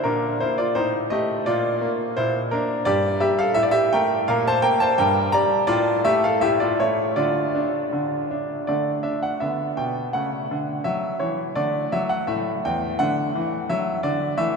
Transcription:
0.04 A#2 D4 A#4
0.40 A#3 E4 C5
0.58 F4 D5
0.75 A2 D#4 C5
1.10 A3 G4 D#5
1.46 A#2 F4 D5
1.81 A#3
2.17 A#2 E4 C5
2.51 A#3 D4 A#4
2.85 G2 G4 D5
3.20 G3 G4 E5
3.39 A4 F5
3.54 A2 E5
3.63 D5
3.71 G4 E5
3.93 A3 A#4 G5
4.28 A#2 A#4 F5
4.47 C5 A5
4.62 A#3 A#4 G5
4.80 C5 A5
4.98 G2 A#4 G5
5.32 G3 D5 A#5
5.67 A2 F4 D5
6.05 A3 G4 E5
6.24 A4 F5
6.41 A2 G4 E5
6.60 F4 D5
6.80 A3 E4 C#5
7.16 D3 F4 D5
7.55 D4
7.93 D3
8.31 D4
8.67 D3 A3 D5
9.03 D4 E5
9.23 F#5
9.40 D3 B3 E5
9.77 B2 G5
10.13 C#3 A3 F#5
10.51 D3
10.84 F#3 E5
11.20 E3 C#5
11.55 D3 A3 D5
11.92 F#3 E5
12.09 F#5
12.27 A2 A3 E5
12.65 E2 G5
12.99 D3 A3 F#5
13.35 E3
13.70 F#3 E5
14.03 D3 D5
14.38 E3 A3 E5

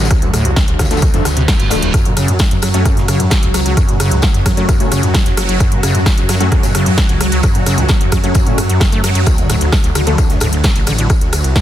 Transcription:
Already playing: F#3 F#4
0.05 snare, tambourine
0.11 D2, kick, cross-stick, closed hi-hat, tambourine
0.22 D2 G2, closed hi-hat
0.34 D2 A2, cross-stick, open hi-hat, tambourine
0.45 C2 D2, closed hi-hat
0.56 D2, kick, cross-stick, snare, closed hi-hat, tambourine
0.68 C2 D2, closed hi-hat
0.79 D2 D3, kick, cross-stick, snare, open hi-hat, tambourine
0.85 snare, tambourine
0.91 D2 D3 F3 A3, snare, closed hi-hat, tambourine
0.97 snare, tambourine
1.02 D2, kick, cross-stick, closed hi-hat, tambourine, reverse cymbal
1.14 F2 G2 D3 F3 A3, closed hi-hat
1.25 D2 D3, cross-stick, snare, open hi-hat, tambourine
1.37 D2 C3, closed hi-hat
1.48 D2, kick, cross-stick, snare, closed hi-hat, tambourine
1.60 D1 G2, snare, closed hi-hat
1.70 D1 D2 D3 F3 A3, cross-stick, snare, open hi-hat, tambourine
1.82 D1 D2, snare, closed hi-hat
1.94 F#2 F#3 F#4, kick, cross-stick, closed hi-hat, tambourine
2.05 F#2 B2, closed hi-hat
2.17 F#2 C#3, cross-stick, open hi-hat, ride, tambourine
2.28 F#2, closed hi-hat
2.39 F3, kick, cross-stick, snare, closed hi-hat, tambourine
2.51 F2 F#2, closed hi-hat
2.62 F#2 F#3, cross-stick, open hi-hat, ride, tambourine
2.74 F#2 F#3 A3 C#4, closed hi-hat
2.85 F#2, kick, cross-stick, closed hi-hat, tambourine
2.97 F#2 B2, snare, open hi-hat
3.08 F#2 C#3, cross-stick, open hi-hat, ride, tambourine
3.20 F#2, closed hi-hat
3.30 F3, kick, cross-stick, snare, closed hi-hat, tambourine
3.42 C#2 F2, closed hi-hat
3.54 C#2 F#3, cross-stick, open hi-hat, ride, tambourine
3.65 C#2 F#3, closed hi-hat
3.77 F#2, kick, cross-stick, closed hi-hat, tambourine
3.88 F#2 B2, closed hi-hat
4.00 F#2 C#3, cross-stick, open hi-hat, ride, tambourine
4.11 C#2 F#2, closed hi-hat
4.22 F3, kick, cross-stick, snare, closed hi-hat, tambourine
4.34 F2 F#2, closed hi-hat
4.46 F#2 F#3, kick, cross-stick, open hi-hat, ride, tambourine
4.57 F#2 F#3 A3 C#4, closed hi-hat
4.69 F#2, kick, cross-stick, closed hi-hat, tambourine
4.80 A2 B2 F#3 A3 C#4, closed hi-hat
4.92 F#2 C#3, cross-stick, open hi-hat, ride, tambourine
5.03 F#2, closed hi-hat
5.14 F3, kick, cross-stick, snare, closed hi-hat, tambourine
5.26 F#1 F2, snare, closed hi-hat
5.37 F#1 F#3, cross-stick, snare, open hi-hat, ride
5.49 F#1 F#3, closed hi-hat
5.60 F#2, kick, cross-stick, closed hi-hat, tambourine
5.72 F#2 B2, closed hi-hat
5.83 F#2 C#3, cross-stick, open hi-hat, ride, tambourine
5.95 F#2, closed hi-hat
6.06 F3, kick, cross-stick, snare, closed hi-hat, tambourine
6.18 F2 F#2, closed hi-hat
6.29 F#2 F#3, cross-stick, snare, open hi-hat, ride, tambourine
6.40 F#2 F#3 A3 C#4, snare, closed hi-hat
6.52 F#2, kick, cross-stick, snare, closed hi-hat, open hi-hat
6.63 F#2 B2, snare, open hi-hat, tambourine
6.75 F#2 C#3, cross-stick, snare, open hi-hat, ride
6.86 F#2, snare, closed hi-hat, open hi-hat
6.97 F3, kick, cross-stick, snare, closed hi-hat, tambourine
7.09 C#2 F2, snare, closed hi-hat
7.21 C#2 F#3, cross-stick, snare, open hi-hat, ride
7.32 C#2 F#3, closed hi-hat
7.43 F#2, kick, cross-stick, closed hi-hat, tambourine
7.55 F#2 B2, closed hi-hat
7.66 F#2 C#3, cross-stick, open hi-hat, ride, tambourine
7.78 C#2 F#2, closed hi-hat
7.88 F3, kick, cross-stick, snare, closed hi-hat, tambourine
8.01 F2 F#2, closed hi-hat
8.12 F#2 F#3, kick, cross-stick, open hi-hat, ride, tambourine
8.24 F#2 F#3 A3 C#4, closed hi-hat
8.35 F#2, kick, cross-stick, closed hi-hat, tambourine
8.46 A2 B2 F#3 A3 C#4, closed hi-hat
8.58 F#2, cross-stick, open hi-hat, ride, tambourine
8.69 F#2, closed hi-hat
8.80 F#1, kick, cross-stick, snare, closed hi-hat, tambourine
8.92 F#2 A3, snare, closed hi-hat
9.04 F#2 F#3, cross-stick, snare, open hi-hat, ride
9.15 F#2 F#3, closed hi-hat
9.26 D2, kick, cross-stick, closed hi-hat, tambourine
9.38 D2 G2, closed hi-hat
9.50 D2 A2, cross-stick, open hi-hat, ride, tambourine
9.61 D1 D2, closed hi-hat
9.72 C3, kick, cross-stick, snare, closed hi-hat, tambourine
9.84 C2 D2, closed hi-hat
9.95 D2 D3, cross-stick, open hi-hat, ride, tambourine
10.07 D2 D3 F3 A3, closed hi-hat
10.18 D2, kick, cross-stick, closed hi-hat, tambourine
10.29 D2 G2, snare, open hi-hat
10.40 D2 A2, cross-stick, open hi-hat, ride, tambourine
10.53 D1 D2, closed hi-hat
10.64 C3, kick, cross-stick, snare, closed hi-hat, tambourine
10.76 A1 C2, closed hi-hat
10.87 A1 D3, cross-stick, open hi-hat, ride, tambourine
10.98 A1 D3, closed hi-hat
11.10 kick, cross-stick, closed hi-hat, tambourine
11.21 D2, closed hi-hat
11.33 D2, cross-stick, open hi-hat, ride, tambourine
11.44 C2, closed hi-hat
11.56 kick, cross-stick, snare, closed hi-hat, tambourine

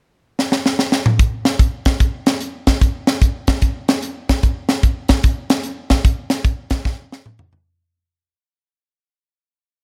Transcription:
0.39 snare
0.52 snare
0.66 snare
0.79 snare
0.92 snare
1.06 mid tom
1.19 kick, closed hi-hat
1.45 snare, closed hi-hat
1.59 kick, closed hi-hat
1.85 kick, snare, closed hi-hat
2.00 kick, closed hi-hat
2.26 snare, closed hi-hat
2.40 closed hi-hat
2.67 kick, snare, closed hi-hat
2.81 kick, closed hi-hat
3.07 snare, closed hi-hat
3.22 kick, closed hi-hat
3.47 kick, snare, closed hi-hat
3.62 kick, closed hi-hat
3.88 snare, closed hi-hat
4.02 closed hi-hat
4.29 kick, snare, closed hi-hat
4.43 kick, closed hi-hat
4.69 snare, closed hi-hat
4.83 kick, closed hi-hat
5.08 kick, snare, closed hi-hat
5.23 kick, closed hi-hat
5.50 snare, closed hi-hat
5.63 closed hi-hat
5.90 kick, snare, closed hi-hat
6.05 kick, closed hi-hat
6.30 snare, closed hi-hat
6.45 kick, closed hi-hat
6.70 kick, snare, closed hi-hat
6.85 kick, snare
7.12 snare
7.26 mid tom
7.39 floor tom
7.53 floor tom

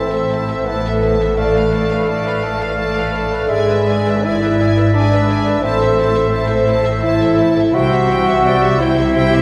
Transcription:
Already playing: A1 A2 C4 E4 A4 C5 E5 A5
0.12 A4 E5
0.30 E4 C5 A5
0.48 A4 E5
0.66 B3 E4 B4 C5 A5
0.83 A4 E5
1.01 C4 E4 C5 A5
1.19 E3 A4 E5
1.37 A2 A3 A4 D5 F5 A5
1.54 D4 A4 B4 F5
1.72 A4 D5 A5
1.90 A4 B4 F5
2.08 A4 D5 A5
2.25 A4 B4 F5
2.42 A4 D5 A5
2.60 A4 B4 F5
2.77 A3 A4 D5 A5
2.96 A4 B4 F5
3.13 D4 A4 D5 A5
3.30 A3 A4 B4 F5
3.48 G#1 G#2 G#3 G#4 D5 E5 G#5
3.66 D4 B4 E5
3.86 G#4 D5 G#5
4.05 B4 E5
4.23 E4 G#4 D5 E5 G#5
4.42 B4 E5
4.60 G#4 D5 G#5
4.76 B4 E5
4.93 D4 G#4 D5 G#5
5.10 B4 E5
5.27 G#4 D5 G#5
5.45 G#3 B4 E5
5.62 A1 A2 C4 E4 C5 E5 A5
5.80 C4 A4 E5
5.96 E4 C5 A5
6.14 A4 C5 E5
6.32 E4 C5 A5
6.48 A4 E5
6.67 E4 C5 A5 C6
6.84 A4 E5
7.02 E4 C5 E5 A5
7.19 A4 E5
7.37 C4 E4 C5 A5
7.55 E3 A4 E5
7.73 C2 C3 E4 F#4 C5 E5 F#5 G5
7.89 C4 G4 E5
8.07 E4 G5
8.11 C5
8.25 G4 C5 E5
8.42 E4 D5 G5
8.47 C5
8.61 G4 E5
8.79 E4 C5 E5 G5 C6
8.96 G4 E5
9.14 E4 C5 E5 G5
9.31 G4 E5

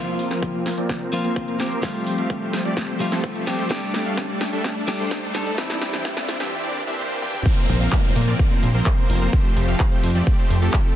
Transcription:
Already playing: F3 A#3 C4 F4 A#4 C5, riser
0.19 open hi-hat
0.31 F3 A#3 C4 A#4 F5, snare, closed hi-hat
0.43 kick, closed hi-hat
0.54 F3 A#3 C4 A#4 C5
0.66 snare, open hi-hat
0.78 F3 A#3 C4 A#4 D5, closed hi-hat
0.89 F3 A#3 C4 A#4 D5, kick, snare, closed hi-hat
1.01 F3 A#3 C4 A#4 C5
1.12 F3 A#3 C4 F4, open hi-hat
1.25 F3 A#3 C4 A#4 C5, closed hi-hat
1.36 kick, closed hi-hat
1.48 F3 A#3 C4 A#4 C5, closed hi-hat
1.59 F3 A#3 C4 G4, snare, open hi-hat
1.71 F3 A#3 C4 A#4 C5, closed hi-hat
1.82 F3 G3 A3 C4 F4 G4 C5, kick, snare, closed hi-hat
1.95 closed hi-hat
2.07 open hi-hat
2.18 F3 A3 C4 G4 F5, closed hi-hat
2.30 kick, closed hi-hat
2.42 F3 A3 C4 G4 C5
2.53 snare, open hi-hat
2.65 F3 A3 C4 G4 D5, closed hi-hat
2.77 F3 A3 C4 G4 D5, kick, snare, closed hi-hat
2.89 F3 A3 C4 G4 C5
2.99 G3 A3 C4 F4, open hi-hat
3.12 F3 A3 C4 G4 A4, snare, closed hi-hat
3.24 kick, closed hi-hat
3.35 F3 A3 C4 G4 A4, closed hi-hat
3.46 G3 A3 C4 G4, snare, open hi-hat
3.59 F3 A3 C4 G4 C5, closed hi-hat
3.69 G3 A3 D4 G4 A4 D5, kick, snare, closed hi-hat
3.94 snare, open hi-hat
4.06 G3 A3 D4 A4 F5, closed hi-hat
4.17 kick, snare, closed hi-hat
4.29 G3 A3 D4 A4 D5
4.41 snare, open hi-hat
4.53 G3 A3 D4 A4 E5, closed hi-hat
4.64 G3 A3 D4 A4 E5, kick, snare, closed hi-hat
4.76 G3 A3 D4 A4 D5
4.87 G3 A3 D4 G4, snare, open hi-hat
5.00 G3 A3 D4 A4 C5, closed hi-hat
5.11 kick, snare, closed hi-hat
5.23 G3 A3 D4 A4 C5, closed hi-hat
5.34 G3 A3 D4 A4, snare, open hi-hat
5.46 G3 A3 D4 A4 D5, closed hi-hat
5.57 E3 G3 C4 D4 E4 G4 D5, kick, snare, closed hi-hat
5.70 snare, closed hi-hat
5.82 snare, open hi-hat
5.93 E3 C4 D4 G4 G5, snare, closed hi-hat
6.05 kick, snare, closed hi-hat
6.17 E3 C4 D4 G4 D5, snare
6.29 snare, open hi-hat
6.40 E3 C4 D4 G4 E5, snare, closed hi-hat
6.52 E3 C4 D4 G4 E5, swell
6.64 E3 C4 D4 G4 D5
6.87 E3 C4 D4 G4 E5
6.99 E3 C4 D4 G4 C5
7.22 E3 C4 D4 G4 G5, high tom
7.34 mid tom
7.46 F3 A#3 C4 A#4 C5, kick, closed hi-hat, crash, downlifter
7.58 closed hi-hat
7.69 A#1, open hi-hat
7.81 F3 A#3 C4 A#4 F5, closed hi-hat
7.92 kick, clap, closed hi-hat
8.04 F3 A#3 C4 A#4 C5, closed hi-hat
8.16 A#2, open hi-hat
8.28 F3 A#3 C4 A#4 D5, closed hi-hat
8.39 F3 A#3 C4 A#4 D5, kick, closed hi-hat
8.51 F3 A#3 C4 A#4 C5, closed hi-hat
8.63 A#1, open hi-hat
8.74 F3 A#3 C4 A#4 C5, closed hi-hat
8.86 kick, clap, closed hi-hat
8.98 F3 A#3 C4 A#4 C5, closed hi-hat
9.10 F1, open hi-hat
9.21 F3 A#3 C4 A#4 C5, closed hi-hat
9.33 F3 A3 C4 G4 C5, kick, closed hi-hat
9.45 closed hi-hat
9.57 F1, open hi-hat
9.68 F3 A3 C4 G4 F5, closed hi-hat
9.80 kick, clap, closed hi-hat
9.92 F3 A3 C4 G4 C5, closed hi-hat
10.03 F2, open hi-hat
10.15 F3 A3 C4 G4 D5
10.27 F3 A3 C4 G4 D5, kick, closed hi-hat
10.39 F3 A3 C4 G4 C5, closed hi-hat
10.50 F1, open hi-hat
10.62 F3 A3 C4 G4 A4, closed hi-hat
10.74 kick, clap, closed hi-hat
10.85 F3 A3 C4 G4 A4, closed hi-hat

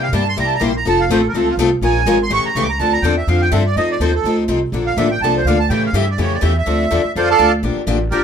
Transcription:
Already playing: C3
0.03 F5
0.13 G2 C3 G3 A#3 E4 G4 A5
0.29 C6
0.37 C2 C3 G3 A#3 E4 G4 A#5
0.46 A5
0.55 A#5
0.60 A#1 C3 G3 A#3 E4 G4 C6
0.77 A#5
0.85 F1 F3 A3 C4 F4 A4 A5
1.01 F5
1.09 A1 F3 A3 C4 F4 A4 C5
1.20 A4
1.29 A#4
1.34 C#2 F3 A3 C4 F4 A4
1.50 F4
1.57 C2 F3 A3 C4 F4 A4
1.81 A#1 F3 G#3 C#4 F4 A#4 G#5
2.06 G#1 F3 G#3 C#4 F4 A#4
2.23 C6
2.30 A1 C#3 E3 A3 C#4 G4 C#6
2.44 A#5, muted upright bass stroke
2.55 C#2 C#3 E3 A3 C#4 G4 C#6
2.63 D6
2.70 A#5
2.79 D2 D3 F3 C4 D4 A4 A5
2.93 A#5
3.02 E2 D3 F3 C4 D4 A4 G5
3.17 E5
3.27 F2 D3 F3 C4 D4 A4 F5
3.42 G5
3.52 G2 D3 F3 C4 D4 A4 E5
3.66 D5
3.76 F2 F3 C4 D#4 A4 D#5
3.91 D5
4.00 D#2 F3 C4 D#4 A4 C5
4.15 A4
4.24 D2 F3 C4 D#4 A4
4.48 C2 F3 C4 D#4 A4
4.72 A#1 D3 F3 A#3 D4 A4
4.86 F5
4.97 A1 D3 F3 A#3 D4 A4 E5
5.11 G5
5.21 C2 D3 F3 A#3 D4 A4 A5
5.37 C5
5.45 D2 D3 F3 A#3 D4 A4 F5
5.59 A5
5.70 A2 C#3 E3 A3 C#4 G4 G5
5.86 F5
5.93 G2 C#3 E3 A3 C#4 G4 E5
6.10 D5
6.18 F2 C#3 E3 A3 C#4 G4 C#5
6.34 D5
6.41 E2 C#3 E3 A3 C#4 G4 E5
6.58 E5
6.66 D2 D3 F3 C4 D4 A4
6.91 E2 D3 F3 C4 D4 A4
7.05 muted upright bass stroke
7.16 F2 D3 F3 C4 D4 F4 A4 C5 D5 F5
7.30 A4 D5 F5 A5
7.38 D2 D3 F3 C4 D4 A4
7.63 A#1 D3 F3 A#3 D4 G4
7.76 muted upright bass stroke
7.87 A1 D3 F3 A#3 D4 G4
8.11 G1 D3 F3 A#3 D4 G4 A#4 D5 G5

